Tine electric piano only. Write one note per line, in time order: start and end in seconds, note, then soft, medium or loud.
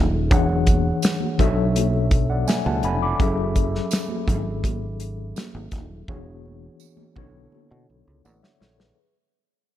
0.00 0.27 F#3 medium
0.00 0.27 C#4 medium
0.00 0.27 G#4 medium
0.00 0.27 A4 medium
0.00 0.28 E5 medium
0.30 1.39 E3 medium
0.30 1.38 D4 medium
0.30 1.39 G#4 medium
0.30 1.39 C#5 medium
0.30 1.39 F#5 medium
1.38 3.15 B2 medium
1.38 3.15 F#3 medium
1.38 3.16 D4 medium
1.38 3.16 A4 medium
1.38 2.10 C#5 medium
1.38 2.11 E5 medium
2.30 2.47 D5 medium
2.30 2.47 F#5 medium
2.48 2.65 E5 medium
2.48 2.65 G#5 medium
2.66 2.83 F#5 medium
2.66 2.83 A5 medium
2.85 3.01 G#5 medium
2.85 3.01 B5 medium
3.02 3.36 B5 medium
3.02 3.36 D6 medium
3.20 6.04 F#3 medium
3.20 6.04 C#4 medium
3.20 6.05 G#4 medium
3.20 6.05 A4 medium
3.20 6.05 E5 medium
6.08 7.16 E3 medium
6.08 7.15 B3 medium
6.08 7.17 D4 medium
6.08 7.17 F#4 medium
6.08 7.17 G#4 medium
6.08 7.17 C#5 medium
7.16 8.93 D3 medium
7.16 8.93 B3 medium
7.16 7.23 C#4 medium
7.16 8.94 E4 medium
7.16 8.23 A4 medium
7.16 8.23 C#5 medium
7.23 8.97 D4 medium
8.25 8.42 D5 medium
8.25 8.42 F#5 medium
8.43 8.59 C#5 medium
8.43 8.60 E5 medium
8.60 8.78 A4 medium
8.60 8.78 C#5 medium
8.79 9.13 G#4 medium
8.79 9.13 B4 medium